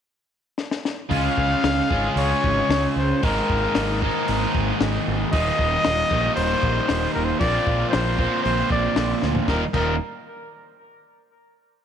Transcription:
0.58 snare medium
0.71 snare medium
0.85 snare medium
1.09 1.27 C#2 medium
1.09 1.88 C#3 medium
1.09 1.92 G#3 medium
1.09 1.89 C#4 medium
1.09 1.89 F4 medium
1.09 1.90 G#4 medium
1.09 2.13 F5 loud
1.09 kick loud
1.09 open hi-hat medium
1.38 1.54 C#2 medium
1.38 kick medium
1.64 1.80 C#2 medium
1.64 snare loud
1.64 open hi-hat medium
1.90 2.07 G#1 medium
1.90 3.22 C#3 medium
1.90 3.21 G#3 medium
1.90 3.21 C#4 medium
1.90 3.21 F4 medium
1.90 3.20 G#4 medium
1.90 kick medium
2.16 2.32 C#2 medium
2.16 2.92 C#5 loud
2.16 open hi-hat medium
2.44 2.60 G#1 medium
2.44 kick medium
2.69 2.85 C#2 medium
2.69 snare loud
2.69 open hi-hat medium
2.96 3.12 C#2 medium
2.96 3.26 C5 medium
3.22 3.39 G#1 medium
3.22 3.99 G#2 medium
3.22 4.00 D#3 medium
3.22 4.00 G#3 medium
3.22 4.02 A#3 medium
3.22 4.02 D#4 medium
3.22 4.02 A#4 medium
3.22 kick loud
3.22 open hi-hat medium
3.50 3.66 G#1 medium
3.50 kick medium
3.75 4.08 G#1 medium
3.75 snare loud
3.75 open hi-hat medium
4.02 5.32 G#2 medium
4.02 5.32 D#3 medium
4.02 5.32 G#3 medium
4.02 5.34 A#3 medium
4.02 5.31 D#4 medium
4.02 4.51 A#4 medium
4.02 kick medium
4.28 4.45 G#1 loud
4.28 open hi-hat soft
4.55 4.71 G#1 medium
4.55 kick medium
4.81 4.97 G#1 medium
4.81 snare loud
4.81 open hi-hat soft
5.08 5.23 G#1 medium
5.32 5.49 D#1 medium
5.32 6.09 D#2 medium
5.32 6.09 A#2 loud
5.32 6.09 D#3 medium
5.32 6.10 G3 medium
5.32 6.11 A#3 loud
5.32 6.09 D#4 loud
5.32 6.32 D#5 loud
5.32 kick loud
5.32 open hi-hat medium
5.59 5.75 D#1 medium
5.59 kick medium
5.85 6.02 D#1 medium
5.85 snare loud
5.85 open hi-hat medium
6.10 6.27 A#1 medium
6.10 7.40 D#2 medium
6.10 7.38 A#2 medium
6.10 7.40 D#3 medium
6.10 7.39 G3 medium
6.10 7.41 A#3 medium
6.10 7.39 D#4 medium
6.10 kick medium
6.35 6.53 D#1 loud
6.35 7.10 C5 loud
6.35 open hi-hat medium
6.63 6.79 A#1 medium
6.63 kick medium
6.89 7.05 D#1 medium
6.89 snare loud
6.89 open hi-hat medium
7.14 7.32 D#1 medium
7.14 7.26 A#4 medium
7.25 7.39 C5 medium
7.39 7.57 A#1 loud
7.39 8.16 A#2 medium
7.39 8.16 F3 medium
7.39 8.17 A#3 medium
7.39 8.17 C4 medium
7.39 8.16 F4 loud
7.39 7.88 D5 medium
7.39 kick loud
7.39 open hi-hat medium
7.67 7.83 A#1 medium
7.67 kick medium
7.90 8.39 C5 medium
7.90 snare loud
7.90 open hi-hat medium
7.94 8.26 A#1 medium
8.17 9.46 A#2 medium
8.17 9.47 F3 medium
8.17 9.47 A#3 medium
8.17 9.46 C4 medium
8.17 9.46 F4 medium
8.17 kick medium
8.42 8.61 A#1 loud
8.42 8.67 C5 medium
8.42 open hi-hat soft
8.70 8.87 A#1 medium
8.70 9.19 D5 medium
8.70 kick medium
8.96 9.12 A#1 medium
8.96 snare loud
8.96 open hi-hat medium
9.22 9.39 D2 medium
9.22 snare medium
9.35 floor tom medium
9.48 9.62 D#1 medium
9.48 9.63 D#2 medium
9.48 9.63 A#2 loud
9.48 9.63 D#3 loud
9.48 9.64 G3 medium
9.48 9.64 A#3 loud
9.48 9.64 D#4 medium
9.48 9.63 A#4 medium
9.48 kick loud
9.48 snare medium
9.73 9.98 D#1 medium
9.73 9.94 D#2 loud
9.73 9.94 A#2 loud
9.73 9.94 D#3 medium
9.73 9.94 G3 loud
9.73 9.95 A#3 loud
9.73 9.95 D#4 loud
9.73 9.98 A#4 medium
9.73 kick loud
9.73 crash medium

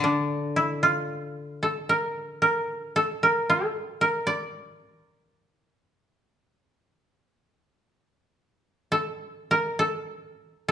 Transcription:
0.00 3.19 D3 soft
0.00 2.46 D4 medium
0.56 0.89 E4 medium
0.83 3.01 F4 medium
1.63 1.95 A4 medium
1.89 2.42 A#4 medium
2.42 3.02 A#4 medium
2.96 3.29 A4 medium
3.23 3.56 A#4 medium
3.50 4.07 A4 medium
4.01 5.85 A#4 medium
4.27 7.68 D5 medium
8.92 9.57 A4 medium
9.51 9.85 A#4 medium
9.79 10.68 A4 medium
10.68 10.71 A4 medium

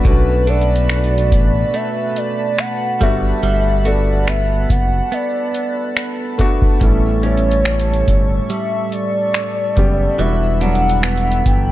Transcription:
0.00 0.89 B3 medium
0.00 0.47 D4 medium
0.00 6.77 B5 medium
0.04 1.33 B1 loud
0.04 3.10 B2 medium
0.04 0.45 A3 medium
0.04 0.45 C#4 medium
0.04 0.46 D4 medium
0.04 2.98 F#4 medium
0.04 0.46 F#4 medium
0.04 2.98 B4 medium
0.04 0.50 B4 medium
0.04 10.15 A5 medium
0.04 kick loud
0.04 closed hi-hat medium
0.47 2.07 A3 medium
0.47 2.07 B3 medium
0.47 3.85 D4 medium
0.47 2.08 D4 medium
0.47 2.09 A4 medium
0.47 1.77 D5 loud
0.47 closed hi-hat soft
0.61 closed hi-hat soft
0.76 closed hi-hat soft
0.89 1.74 A3 medium
0.89 finger snap loud
0.89 closed hi-hat soft
1.04 closed hi-hat soft
1.18 closed hi-hat soft
1.32 1.64 A1 medium
1.32 kick loud
1.32 closed hi-hat medium
1.74 3.46 A3 medium
1.74 2.19 E5 loud
1.74 closed hi-hat medium
2.16 2.61 D5 loud
2.16 closed hi-hat medium
2.58 3.03 F#5 loud
2.58 finger snap loud
2.58 closed hi-hat medium
3.00 3.33 G1 loud
3.00 3.43 G3 medium
3.00 3.80 A3 medium
3.00 3.81 B3 medium
3.00 3.81 D4 medium
3.00 3.82 F#4 medium
3.00 11.72 A4 medium
3.00 3.88 E5 loud
3.00 6.77 F#5 medium
3.00 kick medium
3.00 closed hi-hat medium
3.43 4.66 G1 loud
3.43 6.84 G3 medium
3.43 closed hi-hat medium
3.85 5.45 A3 medium
3.85 5.46 B3 medium
3.85 5.46 D4 medium
3.85 6.90 F#4 medium
3.85 5.46 A4 medium
3.85 4.30 D5 loud
3.85 closed hi-hat medium
4.27 5.11 B3 medium
4.27 4.72 E5 loud
4.27 finger snap loud
4.27 closed hi-hat medium
4.70 5.02 F#1 medium
4.70 5.15 F#5 loud
4.70 kick medium
4.70 closed hi-hat medium
5.12 6.90 B3 medium
5.12 6.39 D5 medium
5.12 closed hi-hat medium
5.54 closed hi-hat medium
5.97 finger snap loud
5.97 closed hi-hat medium
6.38 6.78 A3 medium
6.38 6.79 B3 medium
6.38 6.79 D4 medium
6.38 6.80 F#4 medium
6.38 kick medium
6.38 closed hi-hat medium
6.62 kick medium
6.80 8.04 A1 loud
6.80 10.19 A2 medium
6.80 7.21 G3 medium
6.80 7.21 B3 medium
6.80 7.22 C#4 medium
6.80 7.22 E4 medium
6.80 7.25 A4 medium
6.80 11.72 E5 medium
6.80 10.15 C#6 medium
6.80 kick loud
6.80 closed hi-hat medium
7.22 8.83 G3 medium
7.22 8.83 B3 medium
7.22 10.28 C#4 medium
7.22 8.84 C#4 medium
7.22 8.84 E4 medium
7.22 8.50 C#5 loud
7.22 closed hi-hat soft
7.37 closed hi-hat soft
7.51 closed hi-hat medium
7.65 8.50 G3 medium
7.65 finger snap loud
7.65 closed hi-hat soft
7.80 closed hi-hat soft
7.94 closed hi-hat soft
8.08 8.40 G1 loud
8.08 kick medium
8.08 closed hi-hat medium
8.50 10.19 G3 medium
8.50 8.95 E5 medium
8.50 closed hi-hat medium
8.92 10.21 D5 loud
8.92 closed hi-hat medium
9.34 finger snap loud
9.34 closed hi-hat medium
9.76 10.09 F#1 medium
9.76 10.17 C#3 medium
9.76 10.16 G3 medium
9.76 10.17 B3 medium
9.76 10.18 G4 medium
9.76 kick medium
9.76 closed hi-hat medium
10.18 11.42 E1 loud
10.18 11.72 E3 medium
10.18 10.59 G3 medium
10.18 10.59 B3 medium
10.18 10.59 D4 medium
10.18 10.60 F#4 medium
10.18 10.61 E5 loud
10.18 11.72 B5 medium
10.18 closed hi-hat medium
10.60 11.72 F#3 medium
10.60 11.72 G3 medium
10.60 11.72 B3 medium
10.60 11.72 D4 medium
10.60 11.42 F#5 loud
10.60 closed hi-hat soft
10.75 closed hi-hat soft
10.89 closed hi-hat soft
11.03 11.72 B3 medium
11.03 finger snap loud
11.03 closed hi-hat medium
11.17 closed hi-hat soft
11.32 closed hi-hat soft
11.46 11.72 G1 medium
11.46 11.72 G5 loud
11.46 kick medium
11.46 closed hi-hat medium

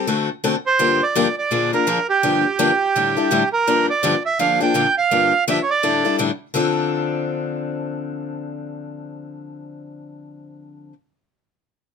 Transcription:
0.07 0.28 D3 medium
0.07 0.28 A3 medium
0.07 0.28 C4 medium
0.07 0.28 F#4 medium
0.07 0.29 A4 medium
0.44 0.55 D3 medium
0.44 0.55 A3 medium
0.44 0.55 C4 medium
0.44 0.55 F#4 medium
0.44 0.55 A4 medium
0.66 1.03 C5 medium
0.79 1.00 G2 medium
0.79 1.00 D3 medium
0.79 1.00 F3 medium
0.79 1.00 A#3 medium
0.79 1.00 D4 medium
0.79 1.00 G4 medium
1.03 1.36 D5 medium
1.15 1.26 G2 medium
1.15 1.26 D3 medium
1.15 1.27 F3 medium
1.15 1.27 A#3 medium
1.15 1.27 D4 medium
1.15 1.27 G4 medium
1.38 1.71 D5 medium
1.51 1.72 A#2 medium
1.51 1.72 D3 medium
1.51 1.72 F3 medium
1.51 1.72 A#3 medium
1.51 1.72 D4 medium
1.51 1.72 G#4 medium
1.73 1.86 F3 soft
1.73 1.86 A#3 soft
1.73 1.86 D4 soft
1.73 1.86 G#4 soft
1.73 2.07 A#4 medium
1.87 1.98 A#2 medium
1.87 1.98 D3 medium
1.87 1.98 F3 medium
1.87 1.98 A#3 medium
1.87 1.98 D4 medium
1.87 1.98 G#4 medium
2.09 3.49 G4 medium
2.23 2.44 G2 medium
2.23 2.44 D3 medium
2.23 2.44 F3 medium
2.23 2.44 A#3 medium
2.23 2.44 D4 medium
2.23 2.44 G4 medium
2.59 2.70 G2 medium
2.59 2.70 D3 medium
2.59 2.70 F3 medium
2.59 2.70 A#3 medium
2.59 2.70 D4 medium
2.59 2.70 G4 medium
2.96 3.16 A2 medium
2.96 3.16 D3 medium
2.96 3.16 G3 medium
2.96 3.16 D4 medium
2.96 3.16 E4 medium
2.96 3.15 A4 medium
3.17 3.30 G3 soft
3.17 3.31 D4 soft
3.17 3.30 E4 medium
3.17 3.31 A4 medium
3.31 3.42 A2 medium
3.31 3.42 D3 medium
3.31 3.42 G3 medium
3.31 3.42 D4 medium
3.31 3.42 E4 medium
3.31 3.43 A4 medium
3.53 3.86 A#4 medium
3.67 3.88 G2 medium
3.67 3.88 D3 medium
3.67 3.88 F3 medium
3.67 3.88 A#3 medium
3.67 3.88 D4 medium
3.67 3.88 G4 medium
3.90 4.23 D5 medium
4.03 4.14 G2 medium
4.03 4.14 D3 medium
4.03 4.14 F3 medium
4.03 4.14 A#3 medium
4.03 4.14 D4 medium
4.03 4.14 G4 medium
4.26 4.39 E5 medium
4.39 4.60 A#2 medium
4.39 4.60 D3 medium
4.39 4.60 F3 medium
4.39 4.60 A#3 medium
4.39 4.60 D4 medium
4.39 4.59 G#4 medium
4.39 4.59 F5 medium
4.60 4.74 F3 soft
4.60 4.74 A#3 soft
4.60 4.74 D4 soft
4.60 4.74 G#4 medium
4.60 4.95 G5 loud
4.74 4.86 A#2 medium
4.74 4.86 D3 medium
4.74 4.86 F3 medium
4.74 4.86 A#3 medium
4.74 4.86 D4 medium
4.74 4.86 G#4 medium
4.98 5.44 F5 medium
5.11 5.32 G2 medium
5.11 5.32 D3 medium
5.11 5.32 F3 medium
5.11 5.32 A#3 medium
5.11 5.32 D4 medium
5.11 5.32 G4 medium
5.47 5.58 G2 medium
5.47 5.58 D3 medium
5.47 5.58 F3 medium
5.47 5.58 A#3 medium
5.47 5.58 D4 medium
5.47 5.58 G4 medium
5.47 5.62 E5 medium
5.63 5.70 C#5 medium
5.70 6.16 D5 medium
5.83 6.03 A2 medium
5.83 6.04 D3 medium
5.83 6.04 G3 medium
5.83 6.04 D4 medium
5.83 6.04 E4 medium
5.83 6.03 A4 medium
6.05 6.18 G3 soft
6.05 6.18 D4 soft
6.05 6.18 E4 soft
6.05 6.18 A4 soft
6.19 6.30 A2 medium
6.19 6.30 D3 medium
6.19 6.30 G3 medium
6.19 6.30 D4 medium
6.19 6.30 E4 medium
6.19 6.30 A4 medium
6.54 10.92 D3 medium
6.54 10.93 F3 medium
6.54 10.93 C4 medium
6.54 10.93 D4 medium
6.54 10.93 A4 medium

